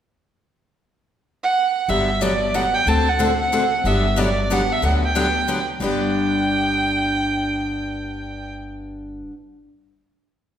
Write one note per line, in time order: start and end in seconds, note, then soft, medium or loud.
1.43 1.91 F#5 medium
1.88 2.66 G1 medium
1.88 2.08 D3 medium
1.88 2.08 F#3 medium
1.88 2.08 B3 medium
1.88 2.09 D4 medium
1.88 2.09 G4 medium
1.88 2.23 E5 medium
2.21 2.31 D3 medium
2.21 2.32 F#3 loud
2.21 2.32 B3 medium
2.21 2.32 D4 medium
2.21 2.32 G4 medium
2.21 2.56 D5 medium
2.54 2.64 D3 medium
2.54 2.64 F#3 medium
2.54 2.65 B3 medium
2.54 2.65 D4 medium
2.54 2.65 G4 medium
2.54 2.76 F#5 medium
2.74 2.90 G5 medium
2.86 3.64 D2 medium
2.86 3.06 D3 medium
2.86 3.06 A3 medium
2.86 3.07 C4 medium
2.86 3.07 F#4 medium
2.86 3.07 A4 medium
2.86 3.10 A5 medium
3.08 3.39 F#5 medium
3.19 3.29 D3 medium
3.19 3.30 A3 medium
3.19 3.30 C4 medium
3.19 3.30 F#4 loud
3.19 3.30 A4 medium
3.40 3.88 F#5 medium
3.52 3.62 D3 medium
3.52 3.63 A3 medium
3.52 3.63 C4 loud
3.52 3.63 F#4 medium
3.52 3.63 A4 medium
3.84 4.62 G1 medium
3.84 4.05 D3 medium
3.84 4.05 F#3 medium
3.84 4.05 B3 medium
3.84 4.05 D4 medium
3.84 4.05 G4 medium
3.84 4.21 E5 medium
4.16 4.27 D3 medium
4.16 4.28 F#3 medium
4.16 4.28 B3 medium
4.16 4.28 D4 loud
4.16 4.28 G4 loud
4.16 4.53 D5 medium
4.50 4.60 D3 medium
4.50 4.61 F#3 medium
4.50 4.61 B3 medium
4.50 4.61 D4 medium
4.50 4.61 G4 medium
4.50 4.74 F#5 medium
4.72 4.84 E5 medium
4.82 5.60 D2 medium
4.82 5.02 D3 medium
4.82 5.03 F#3 medium
4.82 5.03 B3 medium
4.82 5.03 D4 medium
4.82 5.03 G4 medium
4.82 4.93 F#5 medium
5.04 5.64 G5 medium
5.15 5.26 D3 medium
5.15 5.26 F#3 medium
5.15 5.26 B3 medium
5.15 5.26 D4 loud
5.15 5.26 G4 loud
5.47 5.58 D3 medium
5.47 5.58 F#3 medium
5.47 5.59 B3 medium
5.47 5.59 D4 medium
5.47 5.59 G4 medium
5.80 9.21 G1 medium
5.80 9.30 G2 medium
5.80 9.31 D3 medium
5.80 9.32 B3 medium
5.80 9.33 D4 medium
5.80 9.34 G4 medium
5.80 8.52 G5 medium